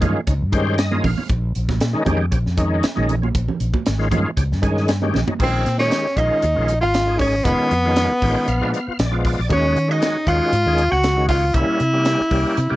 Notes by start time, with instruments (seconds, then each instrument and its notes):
0.01 fretless electric bass G2, tonewheel organ D#3 G#3 C#4 F4, kick, closed hi-hat, high conga, low conga
0.27 fretless electric bass C#2, tonewheel organ C#4 D#4, kick, closed hi-hat
0.41 fretless electric bass G2
0.52 tonewheel organ D#3 G#3 C#4 G4 C5, kick, closed hi-hat
0.78 tonewheel organ D#5, snare, closed hi-hat
0.91 tonewheel organ D#3 G#3 C#4 F4, high conga
1.04 fretless electric bass A#1, tonewheel organ F5, kick, open hi-hat, low conga
1.18 tonewheel organ C#4 F4, muted fretless electric bass stroke, high conga
1.29 fretless electric bass A#1, kick, closed hi-hat
1.55 fretless electric bass A#1, closed hi-hat
1.69 kick, snare, high conga
1.80 fretless electric bass A#2, snare, closed hi-hat
1.93 tonewheel organ D#3 G#3 C#4 D#4, muted fretless electric bass stroke
2.05 fretless electric bass F2, tonewheel organ D#3 G#3 C#4 G4, kick, closed hi-hat, high conga, low conga
2.31 fretless electric bass A#1, tonewheel organ C#4 G4, kick, closed hi-hat
2.46 fretless electric bass F2, snare
2.57 tonewheel organ D#3 G#3 C#4 D#4, kick, closed hi-hat
2.83 muted fretless electric bass stroke, snare, closed hi-hat
2.96 fretless electric bass A#1, tonewheel organ D#3 G#3 C#4 D#4, high conga
3.09 closed hi-hat, low conga
3.22 tonewheel organ C#4 F4, high conga
3.35 fretless electric bass A#1, kick, closed hi-hat
3.48 low conga
3.60 fretless electric bass A#1, closed hi-hat
3.74 kick, high conga
3.86 fretless electric bass G#1, snare, closed hi-hat
3.98 tonewheel organ D#3 G#3 C#4 F4, snare
4.11 fretless electric bass G2, tonewheel organ D#3 G#3 C#4 F4, kick, closed hi-hat, high conga, low conga
4.37 fretless electric bass C#2, tonewheel organ C#4 G4, kick, closed hi-hat
4.52 fretless electric bass G2, snare
4.62 tonewheel organ D#3 G#3 C#4 G#4, kick, closed hi-hat
4.77 snare
4.88 snare, closed hi-hat
5.02 tonewheel organ D#3 G#3 C#4 G4, high conga
5.14 fretless electric bass A#1, snare, low conga
5.27 tonewheel organ C#4 D#4, floor tom, high conga
5.39 fretless electric bass A#1, tonewheel organ D#3 G#3 C#4 F4, tenor saxophone C4, kick, crash
5.44 hollow-body jazz guitar C5
5.66 fretless electric bass A#2, snare, closed hi-hat
5.78 tonewheel organ D#3 G#3 C#4 G4, tenor saxophone C#4, hollow-body jazz guitar C#5, snare
5.91 snare, closed hi-hat
6.06 snare
6.16 fretless electric bass A#1, tonewheel organ D#3 G#3 C#4 F4, tenor saxophone D#4, hollow-body jazz guitar D#5, kick, closed hi-hat
6.42 fretless electric bass D#2, closed hi-hat
6.55 fretless electric bass A#1, tonewheel organ D#3 G#3 C#4 F4
6.68 closed hi-hat
6.80 fretless electric bass G#1, tonewheel organ C#4 F4, tenor saxophone F4, hollow-body jazz guitar F5
6.94 snare, closed hi-hat
7.07 tonewheel organ D#3 G#3 C#4 G#4
7.19 tenor saxophone C#4, hollow-body jazz guitar C#5, kick, open hi-hat
7.45 fretless electric bass F1, tonewheel organ D#3 G#3 C#4 F4, tenor saxophone B3, hollow-body jazz guitar B4, kick, closed hi-hat
7.60 muted fretless electric bass stroke
7.71 fretless electric bass F2, closed hi-hat
7.85 tonewheel organ D#3 G#3 C#4 F4
7.96 snare, closed hi-hat
8.11 muted fretless electric bass stroke
8.22 fretless electric bass A1, tonewheel organ D#3 G#3 C#4 F4 G5, kick, open hi-hat
8.48 fretless electric bass A#1, tonewheel organ F5, closed hi-hat
8.61 fretless electric bass A#2, tonewheel organ F3 G#3 B3 D4
8.74 tonewheel organ F5, closed hi-hat
8.87 tonewheel organ B3 F4, muted fretless electric bass stroke
8.99 fretless electric bass A#1, tonewheel organ D5, snare, closed hi-hat
9.12 tonewheel organ F3 G#3 B3 F4
9.25 tonewheel organ D5, kick, open hi-hat
9.39 fretless electric bass A#1
9.49 fretless electric bass D#2, tonewheel organ D#3 G#3 C#4 F#4, tenor saxophone C#4, hollow-body jazz guitar C#5, kick, closed hi-hat
9.76 fretless electric bass D#3, closed hi-hat
9.88 tonewheel organ D#3 G#3 C#4 F#4, tenor saxophone D#4, hollow-body jazz guitar D#5
10.02 snare, closed hi-hat
10.27 fretless electric bass D#2, tonewheel organ D#3 G#3 C#4 F#4, tenor saxophone F4, hollow-body jazz guitar F5, kick, closed hi-hat
10.53 fretless electric bass G#2, closed hi-hat
10.66 fretless electric bass D#2, tonewheel organ D#3 G#3 C#4 G#4
10.78 closed hi-hat
10.91 fretless electric bass C#2, tonewheel organ C#4 F#4, tenor saxophone F#4, hollow-body jazz guitar F#5
11.03 snare, closed hi-hat
11.17 tonewheel organ D#3 G#3 C#4 F#4
11.29 tenor saxophone F4, hollow-body jazz guitar F5, kick, open hi-hat
11.54 fretless electric bass C2, tonewheel organ G3 A#3 C#4 E4, tenor saxophone E4, hollow-body jazz guitar E5, kick, closed hi-hat
11.68 muted fretless electric bass stroke
11.80 fretless electric bass C3, closed hi-hat
11.93 tonewheel organ G3 A#3 C#4 G4
12.05 snare, closed hi-hat
12.20 muted fretless electric bass stroke, snare
12.31 fretless electric bass C2, tonewheel organ G3 A#3 C#4 G4, kick, open hi-hat
12.57 fretless electric bass C3, closed hi-hat
12.70 fretless electric bass C3, tonewheel organ G3 A#3 C#4 G4